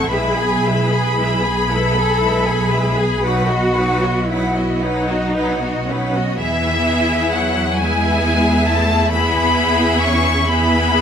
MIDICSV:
0, 0, Header, 1, 6, 480
1, 0, Start_track
1, 0, Key_signature, 4, "major"
1, 0, Tempo, 1073345
1, 53, Time_signature, 12, 3, 24, 8
1, 533, Tempo, 1038062
1, 2933, Tempo, 937500
1, 3413, Tempo, 906344
1, 5369, End_track
2, 0, Start_track
2, 0, Title_t, "Violin section"
2, 0, Program_c, 0, 48
2, 0, Note_on_c, 0, 85, 96
2, 40, Note_on_c, 0, 83, 93
2, 49, Note_off_c, 0, 85, 0
2, 2199, Note_off_c, 0, 83, 0
2, 2934, Note_on_c, 0, 76, 105
2, 3393, Note_off_c, 0, 76, 0
2, 3416, Note_on_c, 0, 78, 98
2, 3656, Note_off_c, 0, 78, 0
2, 3661, Note_on_c, 0, 80, 96
2, 4139, Note_off_c, 0, 80, 0
2, 4147, Note_on_c, 0, 81, 103
2, 4365, Note_on_c, 0, 83, 99
2, 4378, Note_off_c, 0, 81, 0
2, 4835, Note_off_c, 0, 83, 0
2, 4848, Note_on_c, 0, 85, 99
2, 5089, Note_off_c, 0, 85, 0
2, 5089, Note_on_c, 0, 83, 100
2, 5369, Note_off_c, 0, 83, 0
2, 5369, End_track
3, 0, Start_track
3, 0, Title_t, "Violin section"
3, 0, Program_c, 1, 48
3, 0, Note_on_c, 1, 69, 62
3, 0, Note_on_c, 1, 78, 57
3, 40, Note_on_c, 1, 71, 59
3, 42, Note_on_c, 1, 76, 61
3, 46, Note_off_c, 1, 69, 0
3, 46, Note_off_c, 1, 78, 0
3, 159, Note_off_c, 1, 71, 0
3, 160, Note_off_c, 1, 76, 0
3, 166, Note_on_c, 1, 80, 63
3, 167, Note_on_c, 1, 68, 67
3, 284, Note_on_c, 1, 71, 59
3, 288, Note_on_c, 1, 76, 62
3, 291, Note_off_c, 1, 80, 0
3, 292, Note_off_c, 1, 68, 0
3, 409, Note_on_c, 1, 68, 59
3, 409, Note_on_c, 1, 80, 54
3, 410, Note_off_c, 1, 71, 0
3, 412, Note_off_c, 1, 76, 0
3, 529, Note_on_c, 1, 76, 62
3, 530, Note_off_c, 1, 68, 0
3, 530, Note_off_c, 1, 80, 0
3, 530, Note_on_c, 1, 71, 55
3, 643, Note_off_c, 1, 76, 0
3, 644, Note_off_c, 1, 71, 0
3, 646, Note_on_c, 1, 80, 57
3, 648, Note_on_c, 1, 68, 58
3, 768, Note_on_c, 1, 76, 60
3, 769, Note_on_c, 1, 71, 60
3, 770, Note_off_c, 1, 68, 0
3, 770, Note_off_c, 1, 80, 0
3, 881, Note_on_c, 1, 68, 63
3, 882, Note_on_c, 1, 80, 52
3, 890, Note_off_c, 1, 71, 0
3, 890, Note_off_c, 1, 76, 0
3, 995, Note_on_c, 1, 71, 60
3, 999, Note_on_c, 1, 76, 62
3, 1005, Note_off_c, 1, 68, 0
3, 1006, Note_off_c, 1, 80, 0
3, 1113, Note_off_c, 1, 71, 0
3, 1115, Note_off_c, 1, 76, 0
3, 1119, Note_on_c, 1, 68, 57
3, 1119, Note_on_c, 1, 80, 53
3, 1233, Note_on_c, 1, 76, 61
3, 1234, Note_on_c, 1, 71, 61
3, 1242, Note_off_c, 1, 68, 0
3, 1243, Note_off_c, 1, 80, 0
3, 1359, Note_off_c, 1, 76, 0
3, 1359, Note_on_c, 1, 68, 56
3, 1360, Note_off_c, 1, 71, 0
3, 1361, Note_on_c, 1, 80, 56
3, 1476, Note_on_c, 1, 71, 67
3, 1478, Note_on_c, 1, 78, 66
3, 1482, Note_off_c, 1, 68, 0
3, 1483, Note_off_c, 1, 80, 0
3, 1591, Note_off_c, 1, 71, 0
3, 1593, Note_off_c, 1, 78, 0
3, 1594, Note_on_c, 1, 66, 57
3, 1595, Note_on_c, 1, 75, 54
3, 1714, Note_on_c, 1, 78, 65
3, 1717, Note_on_c, 1, 71, 69
3, 1719, Note_off_c, 1, 66, 0
3, 1720, Note_off_c, 1, 75, 0
3, 1838, Note_on_c, 1, 66, 57
3, 1839, Note_off_c, 1, 78, 0
3, 1840, Note_off_c, 1, 71, 0
3, 1841, Note_on_c, 1, 75, 56
3, 1962, Note_off_c, 1, 66, 0
3, 1963, Note_off_c, 1, 75, 0
3, 1969, Note_on_c, 1, 71, 60
3, 1973, Note_on_c, 1, 78, 65
3, 2079, Note_off_c, 1, 71, 0
3, 2081, Note_off_c, 1, 78, 0
3, 2083, Note_on_c, 1, 66, 52
3, 2086, Note_on_c, 1, 75, 55
3, 2205, Note_off_c, 1, 66, 0
3, 2205, Note_on_c, 1, 78, 59
3, 2206, Note_on_c, 1, 71, 64
3, 2207, Note_off_c, 1, 75, 0
3, 2327, Note_off_c, 1, 78, 0
3, 2328, Note_off_c, 1, 71, 0
3, 2335, Note_on_c, 1, 66, 56
3, 2338, Note_on_c, 1, 75, 58
3, 2453, Note_off_c, 1, 66, 0
3, 2455, Note_off_c, 1, 75, 0
3, 2457, Note_on_c, 1, 71, 62
3, 2459, Note_on_c, 1, 78, 55
3, 2568, Note_off_c, 1, 71, 0
3, 2569, Note_off_c, 1, 78, 0
3, 2584, Note_on_c, 1, 75, 58
3, 2586, Note_on_c, 1, 66, 61
3, 2703, Note_off_c, 1, 75, 0
3, 2704, Note_off_c, 1, 66, 0
3, 2710, Note_on_c, 1, 78, 54
3, 2711, Note_on_c, 1, 71, 57
3, 2825, Note_off_c, 1, 78, 0
3, 2826, Note_off_c, 1, 71, 0
3, 2831, Note_on_c, 1, 66, 60
3, 2835, Note_on_c, 1, 75, 64
3, 2940, Note_off_c, 1, 66, 0
3, 2942, Note_off_c, 1, 75, 0
3, 2942, Note_on_c, 1, 76, 75
3, 2945, Note_on_c, 1, 68, 71
3, 3638, Note_off_c, 1, 76, 0
3, 3639, Note_off_c, 1, 68, 0
3, 3670, Note_on_c, 1, 76, 79
3, 3674, Note_on_c, 1, 68, 77
3, 4365, Note_off_c, 1, 76, 0
3, 4367, Note_off_c, 1, 68, 0
3, 4378, Note_on_c, 1, 76, 82
3, 4379, Note_on_c, 1, 68, 92
3, 5078, Note_off_c, 1, 68, 0
3, 5078, Note_off_c, 1, 76, 0
3, 5096, Note_on_c, 1, 76, 74
3, 5100, Note_on_c, 1, 68, 84
3, 5369, Note_off_c, 1, 68, 0
3, 5369, Note_off_c, 1, 76, 0
3, 5369, End_track
4, 0, Start_track
4, 0, Title_t, "Viola section"
4, 0, Program_c, 2, 48
4, 0, Note_on_c, 2, 60, 63
4, 0, Note_on_c, 2, 64, 61
4, 48, Note_off_c, 2, 64, 0
4, 51, Note_off_c, 2, 60, 0
4, 54, Note_on_c, 2, 56, 63
4, 54, Note_on_c, 2, 64, 65
4, 166, Note_off_c, 2, 56, 0
4, 166, Note_off_c, 2, 64, 0
4, 172, Note_on_c, 2, 59, 58
4, 174, Note_on_c, 2, 68, 58
4, 287, Note_on_c, 2, 56, 59
4, 290, Note_on_c, 2, 64, 55
4, 294, Note_off_c, 2, 59, 0
4, 295, Note_off_c, 2, 68, 0
4, 405, Note_on_c, 2, 59, 62
4, 405, Note_on_c, 2, 68, 62
4, 411, Note_off_c, 2, 56, 0
4, 412, Note_off_c, 2, 64, 0
4, 525, Note_on_c, 2, 56, 55
4, 528, Note_off_c, 2, 59, 0
4, 528, Note_off_c, 2, 68, 0
4, 529, Note_on_c, 2, 64, 55
4, 641, Note_off_c, 2, 56, 0
4, 643, Note_off_c, 2, 64, 0
4, 644, Note_on_c, 2, 68, 55
4, 645, Note_on_c, 2, 59, 61
4, 769, Note_off_c, 2, 59, 0
4, 769, Note_off_c, 2, 68, 0
4, 769, Note_on_c, 2, 56, 58
4, 772, Note_on_c, 2, 64, 63
4, 889, Note_on_c, 2, 59, 53
4, 890, Note_off_c, 2, 56, 0
4, 891, Note_off_c, 2, 64, 0
4, 891, Note_on_c, 2, 68, 53
4, 1005, Note_on_c, 2, 56, 59
4, 1006, Note_on_c, 2, 64, 53
4, 1009, Note_off_c, 2, 59, 0
4, 1011, Note_off_c, 2, 68, 0
4, 1118, Note_off_c, 2, 56, 0
4, 1118, Note_off_c, 2, 64, 0
4, 1124, Note_on_c, 2, 59, 53
4, 1126, Note_on_c, 2, 68, 56
4, 1245, Note_off_c, 2, 59, 0
4, 1245, Note_on_c, 2, 64, 54
4, 1246, Note_off_c, 2, 68, 0
4, 1246, Note_on_c, 2, 56, 59
4, 1358, Note_on_c, 2, 68, 56
4, 1361, Note_on_c, 2, 59, 53
4, 1365, Note_off_c, 2, 64, 0
4, 1366, Note_off_c, 2, 56, 0
4, 1481, Note_off_c, 2, 68, 0
4, 1481, Note_on_c, 2, 54, 50
4, 1483, Note_off_c, 2, 59, 0
4, 1485, Note_on_c, 2, 63, 53
4, 1594, Note_off_c, 2, 54, 0
4, 1597, Note_off_c, 2, 63, 0
4, 1598, Note_on_c, 2, 66, 56
4, 1601, Note_on_c, 2, 59, 53
4, 1720, Note_on_c, 2, 54, 59
4, 1721, Note_off_c, 2, 66, 0
4, 1722, Note_off_c, 2, 59, 0
4, 1723, Note_on_c, 2, 63, 63
4, 1842, Note_off_c, 2, 54, 0
4, 1842, Note_on_c, 2, 66, 64
4, 1843, Note_off_c, 2, 63, 0
4, 1845, Note_on_c, 2, 59, 64
4, 1963, Note_off_c, 2, 66, 0
4, 1965, Note_off_c, 2, 59, 0
4, 1971, Note_on_c, 2, 63, 52
4, 1973, Note_on_c, 2, 54, 60
4, 2080, Note_off_c, 2, 63, 0
4, 2081, Note_off_c, 2, 54, 0
4, 2090, Note_on_c, 2, 59, 56
4, 2091, Note_on_c, 2, 66, 55
4, 2209, Note_off_c, 2, 59, 0
4, 2209, Note_off_c, 2, 66, 0
4, 2210, Note_on_c, 2, 54, 65
4, 2210, Note_on_c, 2, 63, 64
4, 2330, Note_off_c, 2, 54, 0
4, 2330, Note_off_c, 2, 63, 0
4, 2341, Note_on_c, 2, 59, 55
4, 2341, Note_on_c, 2, 66, 57
4, 2456, Note_off_c, 2, 59, 0
4, 2457, Note_off_c, 2, 66, 0
4, 2459, Note_on_c, 2, 54, 65
4, 2460, Note_on_c, 2, 63, 61
4, 2569, Note_off_c, 2, 54, 0
4, 2570, Note_off_c, 2, 63, 0
4, 2573, Note_on_c, 2, 59, 55
4, 2574, Note_on_c, 2, 66, 54
4, 2697, Note_off_c, 2, 59, 0
4, 2698, Note_off_c, 2, 66, 0
4, 2701, Note_on_c, 2, 54, 61
4, 2701, Note_on_c, 2, 63, 62
4, 2821, Note_off_c, 2, 54, 0
4, 2821, Note_off_c, 2, 63, 0
4, 2824, Note_on_c, 2, 59, 59
4, 2825, Note_on_c, 2, 66, 60
4, 2933, Note_off_c, 2, 59, 0
4, 2936, Note_off_c, 2, 66, 0
4, 2938, Note_on_c, 2, 64, 76
4, 2939, Note_on_c, 2, 59, 68
4, 3636, Note_off_c, 2, 59, 0
4, 3636, Note_off_c, 2, 64, 0
4, 3656, Note_on_c, 2, 59, 71
4, 3658, Note_on_c, 2, 64, 72
4, 4359, Note_off_c, 2, 59, 0
4, 4359, Note_off_c, 2, 64, 0
4, 4374, Note_on_c, 2, 64, 73
4, 4376, Note_on_c, 2, 59, 68
4, 5076, Note_off_c, 2, 64, 0
4, 5077, Note_off_c, 2, 59, 0
4, 5089, Note_on_c, 2, 59, 77
4, 5090, Note_on_c, 2, 64, 75
4, 5369, Note_off_c, 2, 59, 0
4, 5369, Note_off_c, 2, 64, 0
4, 5369, End_track
5, 0, Start_track
5, 0, Title_t, "Cello section"
5, 0, Program_c, 3, 48
5, 0, Note_on_c, 3, 69, 99
5, 48, Note_on_c, 3, 68, 68
5, 49, Note_off_c, 3, 69, 0
5, 709, Note_off_c, 3, 68, 0
5, 762, Note_on_c, 3, 69, 85
5, 1223, Note_off_c, 3, 69, 0
5, 1238, Note_on_c, 3, 68, 74
5, 1476, Note_on_c, 3, 66, 86
5, 1481, Note_off_c, 3, 68, 0
5, 1956, Note_on_c, 3, 64, 72
5, 1960, Note_off_c, 3, 66, 0
5, 2199, Note_on_c, 3, 63, 85
5, 2202, Note_off_c, 3, 64, 0
5, 2693, Note_off_c, 3, 63, 0
5, 2694, Note_on_c, 3, 61, 68
5, 2927, Note_off_c, 3, 61, 0
5, 2930, Note_on_c, 3, 52, 78
5, 3391, Note_off_c, 3, 52, 0
5, 3413, Note_on_c, 3, 54, 77
5, 3649, Note_off_c, 3, 54, 0
5, 3656, Note_on_c, 3, 56, 76
5, 4137, Note_off_c, 3, 56, 0
5, 4139, Note_on_c, 3, 57, 81
5, 4373, Note_off_c, 3, 57, 0
5, 4376, Note_on_c, 3, 59, 96
5, 4850, Note_off_c, 3, 59, 0
5, 4853, Note_on_c, 3, 61, 85
5, 5086, Note_on_c, 3, 59, 93
5, 5091, Note_off_c, 3, 61, 0
5, 5369, Note_off_c, 3, 59, 0
5, 5369, End_track
6, 0, Start_track
6, 0, Title_t, "Double bass section"
6, 0, Program_c, 4, 48
6, 0, Note_on_c, 4, 33, 94
6, 52, Note_off_c, 4, 33, 0
6, 53, Note_on_c, 4, 35, 73
6, 2816, Note_off_c, 4, 35, 0
6, 2938, Note_on_c, 4, 40, 73
6, 5369, Note_off_c, 4, 40, 0
6, 5369, End_track
0, 0, End_of_file